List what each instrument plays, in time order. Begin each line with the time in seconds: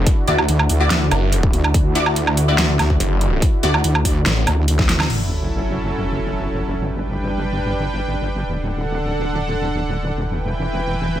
Already playing: supersaw synth D3 D4 E4 F#4, synth stab E4 F#4 D5
0.07 kick, closed hi-hat
0.27 wobble bass D2, synth stab E4 F#4 D5, closed hi-hat
0.38 low woodblock
0.48 wobble bass D2, closed hi-hat
0.59 low woodblock
0.69 wobble bass D2, open hi-hat
0.80 synth stab E4 F#4 D5
0.90 wobble bass D2, snare, closed hi-hat
1.11 detuned saw bass F#1, closed hi-hat, low woodblock
1.32 closed hi-hat
1.43 kick
1.53 wobble bass D2, closed hi-hat
1.64 low woodblock
1.74 wobble bass D2, kick, closed hi-hat
1.95 synth stab E4 F#4 D5, closed hi-hat
2.06 low woodblock
2.16 closed hi-hat
2.27 low woodblock
2.37 open hi-hat
2.48 synth stab E4 F#4 D5
2.58 wobble bass D2, snare, closed hi-hat
2.79 wobble bass D2, snare, closed hi-hat, low woodblock
2.90 kick
3.00 detuned saw bass F#1, closed hi-hat
3.21 closed hi-hat
3.42 kick, closed hi-hat
3.63 wobble bass D2, synth stab E4 F#4 D5, closed hi-hat
3.74 low woodblock
3.84 wobble bass D2, closed hi-hat
3.95 low woodblock
4.05 wobble bass D2, kick, open hi-hat
4.26 detuned saw bass A1, snare, closed hi-hat
4.47 wobble bass D2, closed hi-hat, low woodblock
4.68 closed hi-hat
4.79 kick, snare
4.89 snare, closed hi-hat
5.00 snare, low woodblock
5.10 wobble bass F#1, supersaw synth F#3 C#4 E4 A4, crash, sub drop
6.78 wobble bass G1, supersaw synth G3 D4 B4 G5
8.46 wobble bass D1, supersaw synth D3 D4 A4 F#5
10.13 wobble bass E1, supersaw synth E3 E4 B4 G5